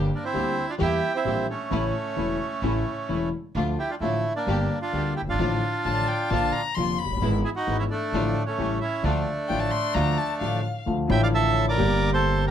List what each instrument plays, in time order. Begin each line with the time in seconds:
0.15 bandoneon A#3 D4
0.24 bandoneon C4 E4
0.33 grand piano D2 D3 G3 A#3 G4, upright bass D2, string section A#3 D4 G4
0.69 bandoneon D4 F4
0.78 grand piano E2 E3 G3 A#3 G4, upright bass E2, string section A#3 E4 G4, bandoneon E4 G4
1.15 bandoneon C4 E4
1.25 grand piano A#1 A#2 E3 G3 A#3 G4, upright bass A#1, string section A#3 E4 G4
1.50 bandoneon A3 C#4
1.70 grand piano A1 A2 C#3 E3 A3 E4, upright bass A1, string section A3 C#4 E4
2.16 grand piano E1 E2 C#3 E3 A3 E4, upright bass E1, string section A3 C#4 E4
2.62 upright bass A1, grand piano A1 A2 C#3 E3 A3 E4, string section A3 C#4 E4
3.09 grand piano E1 E2 C#3 E3 A3 E4, upright bass E1, string section A3 C#4 E4
3.55 upright bass D2, grand piano D2 D3 F3 A3 F4, string section A3 D4 F4
3.79 bandoneon E4 G4
3.90 bandoneon D4 F4
4.00 upright bass A1, grand piano A1 A2 D3 F3 A3 F4, bandoneon A3 E4, string section A3 D4 F4
4.36 bandoneon A#3 D4
4.47 upright bass G1, grand piano G1 G2 D3 G3 A#3 G4, string section A#3 D4 G4
4.82 bandoneon D4 F4
4.92 grand piano D2 D3 G3 A#3 G4, upright bass D2, string section A#3 D4 G4
5.16 bandoneon E4 G4
5.22 upright bass F#1, grand piano F#1
5.27 upright bass G1, grand piano G1, bandoneon D4 F4
5.33 grand piano G#1, upright bass G#1
5.39 upright bass A1, grand piano A1 A2 D3 F3 A3 F4, string section A3 D4 F4
5.85 upright bass A1, grand piano A1 A2 D3 F3 A3 F4, string section A3 D4 F4, violin A5
6.08 violin G5
6.30 grand piano A#1 A#2 D3 F3 A#3 F4, upright bass A#1, string section A#3 D4 F4, violin A5
6.53 violin A#5
6.75 grand piano F1 F2 D3 F3 A#3 F4, upright bass F1, string section A#3 D4 F4, violin C6
6.98 violin B5
7.05 grand piano F1, upright bass F1
7.11 upright bass F#1, grand piano F#1
7.17 upright bass G1, grand piano G1
7.22 grand piano G#1 G#2 E3 G#3 B3 G#4, upright bass G#1, string section G#3 B3 E4
7.44 bandoneon E4 G#4
7.56 bandoneon D#4 F#4
7.67 grand piano G#1 G#2 E3 G#3 B3 G#4, upright bass G#1, string section G#3 B3 E4
7.79 bandoneon C#4 E4
7.90 bandoneon A3 D4
8.13 upright bass A1, grand piano A1 A2 D3 F3 A3 F4, string section A3 D4 F4
8.46 bandoneon A3 C#4
8.58 grand piano A1 A2 C#3 G3 A3 E4, upright bass A1, string section A3 C#4 G4
8.81 bandoneon C#4 E4
9.03 grand piano D2 D3 F3 A3 F4, upright bass D2, string section A3 D4 F4, bandoneon A3 D4
9.48 grand piano A1 A2 D3 F3 A3 F4, upright bass A1, string section A3 D4 F4, violin G5
9.60 violin A5
9.71 violin C6
9.94 grand piano D2 D3 F3 A3 F4, upright bass D2, string section A3 D4 F4, violin A#5
10.18 violin A5
10.40 grand piano A1 A2 D3 F3 A3 F4, upright bass A1, string section A3 D4 F4, violin F5
10.86 grand piano D2 D3 F3 A3 F4, upright bass D2
11.08 grand piano A1 A2 D3 F3 A3 F4, upright bass A1, bandoneon G5
11.12 bandoneon E5
11.23 bandoneon D5 F5
11.34 bandoneon A4 E5
11.69 bandoneon A#4 D5
11.75 grand piano G1 G2 D3 G3 A#3, upright bass G1
11.79 grand piano G4
12.13 bandoneon A4 C5
12.47 bandoneon A#4